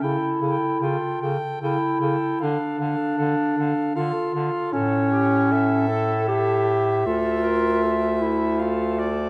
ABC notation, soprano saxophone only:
X:1
M:3/4
L:1/8
Q:1/4=77
K:Dm
V:1 name="Soprano saxophone"
g g g g g g | f f f f f f | ^c2 e2 e2- | e4 f d |]